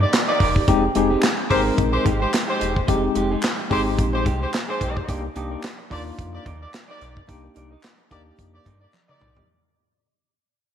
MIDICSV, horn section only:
0, 0, Header, 1, 2, 480
1, 0, Start_track
1, 0, Tempo, 550459
1, 594, Time_signature, 4, 2, 24, 8
1, 9370, End_track
2, 0, Start_track
2, 0, Title_t, "Horn section"
2, 0, Program_c, 0, 61
2, 10, Note_on_c, 0, 74, 90
2, 11, Note_on_c, 0, 67, 84
2, 12, Note_on_c, 0, 58, 80
2, 99, Note_off_c, 0, 74, 0
2, 100, Note_off_c, 0, 58, 0
2, 100, Note_off_c, 0, 67, 0
2, 246, Note_on_c, 0, 74, 103
2, 248, Note_on_c, 0, 58, 100
2, 249, Note_on_c, 0, 67, 88
2, 575, Note_off_c, 0, 74, 0
2, 576, Note_off_c, 0, 58, 0
2, 577, Note_off_c, 0, 67, 0
2, 1312, Note_on_c, 0, 56, 108
2, 1313, Note_on_c, 0, 72, 118
2, 1314, Note_on_c, 0, 67, 111
2, 1398, Note_off_c, 0, 56, 0
2, 1399, Note_off_c, 0, 67, 0
2, 1399, Note_off_c, 0, 72, 0
2, 1685, Note_on_c, 0, 56, 88
2, 1685, Note_on_c, 0, 67, 97
2, 1685, Note_on_c, 0, 72, 100
2, 1776, Note_off_c, 0, 56, 0
2, 1776, Note_off_c, 0, 67, 0
2, 1776, Note_off_c, 0, 72, 0
2, 1926, Note_on_c, 0, 56, 83
2, 1926, Note_on_c, 0, 72, 94
2, 1928, Note_on_c, 0, 67, 82
2, 2016, Note_off_c, 0, 72, 0
2, 2017, Note_off_c, 0, 56, 0
2, 2018, Note_off_c, 0, 67, 0
2, 2165, Note_on_c, 0, 67, 89
2, 2167, Note_on_c, 0, 72, 107
2, 2168, Note_on_c, 0, 56, 92
2, 2495, Note_off_c, 0, 67, 0
2, 2495, Note_off_c, 0, 72, 0
2, 2496, Note_off_c, 0, 56, 0
2, 3232, Note_on_c, 0, 56, 109
2, 3232, Note_on_c, 0, 67, 111
2, 3233, Note_on_c, 0, 72, 121
2, 3318, Note_off_c, 0, 56, 0
2, 3318, Note_off_c, 0, 67, 0
2, 3319, Note_off_c, 0, 72, 0
2, 3605, Note_on_c, 0, 67, 88
2, 3605, Note_on_c, 0, 72, 104
2, 3608, Note_on_c, 0, 56, 95
2, 3696, Note_off_c, 0, 67, 0
2, 3696, Note_off_c, 0, 72, 0
2, 3698, Note_off_c, 0, 56, 0
2, 3851, Note_on_c, 0, 72, 89
2, 3852, Note_on_c, 0, 56, 83
2, 3852, Note_on_c, 0, 67, 83
2, 3939, Note_off_c, 0, 72, 0
2, 3940, Note_off_c, 0, 56, 0
2, 3940, Note_off_c, 0, 67, 0
2, 4089, Note_on_c, 0, 67, 98
2, 4089, Note_on_c, 0, 72, 106
2, 4090, Note_on_c, 0, 56, 108
2, 4417, Note_off_c, 0, 56, 0
2, 4417, Note_off_c, 0, 67, 0
2, 4417, Note_off_c, 0, 72, 0
2, 5157, Note_on_c, 0, 74, 118
2, 5159, Note_on_c, 0, 58, 110
2, 5159, Note_on_c, 0, 67, 106
2, 5241, Note_off_c, 0, 74, 0
2, 5243, Note_off_c, 0, 58, 0
2, 5243, Note_off_c, 0, 67, 0
2, 5530, Note_on_c, 0, 67, 90
2, 5531, Note_on_c, 0, 58, 89
2, 5532, Note_on_c, 0, 74, 100
2, 5619, Note_off_c, 0, 67, 0
2, 5620, Note_off_c, 0, 58, 0
2, 5620, Note_off_c, 0, 74, 0
2, 5771, Note_on_c, 0, 74, 90
2, 5772, Note_on_c, 0, 58, 86
2, 5772, Note_on_c, 0, 67, 83
2, 5860, Note_off_c, 0, 58, 0
2, 5860, Note_off_c, 0, 67, 0
2, 5860, Note_off_c, 0, 74, 0
2, 6010, Note_on_c, 0, 67, 101
2, 6011, Note_on_c, 0, 58, 100
2, 6012, Note_on_c, 0, 74, 110
2, 6337, Note_off_c, 0, 67, 0
2, 6338, Note_off_c, 0, 58, 0
2, 6338, Note_off_c, 0, 74, 0
2, 7077, Note_on_c, 0, 67, 108
2, 7077, Note_on_c, 0, 74, 116
2, 7078, Note_on_c, 0, 58, 108
2, 7161, Note_off_c, 0, 67, 0
2, 7162, Note_off_c, 0, 58, 0
2, 7162, Note_off_c, 0, 74, 0
2, 7448, Note_on_c, 0, 58, 86
2, 7448, Note_on_c, 0, 74, 106
2, 7449, Note_on_c, 0, 67, 92
2, 7538, Note_off_c, 0, 58, 0
2, 7538, Note_off_c, 0, 67, 0
2, 7538, Note_off_c, 0, 74, 0
2, 7684, Note_on_c, 0, 74, 90
2, 7686, Note_on_c, 0, 58, 80
2, 7687, Note_on_c, 0, 67, 81
2, 7775, Note_off_c, 0, 74, 0
2, 7776, Note_off_c, 0, 58, 0
2, 7777, Note_off_c, 0, 67, 0
2, 7923, Note_on_c, 0, 58, 93
2, 7925, Note_on_c, 0, 67, 94
2, 7925, Note_on_c, 0, 74, 114
2, 8253, Note_off_c, 0, 58, 0
2, 8254, Note_off_c, 0, 74, 0
2, 8255, Note_off_c, 0, 67, 0
2, 9370, End_track
0, 0, End_of_file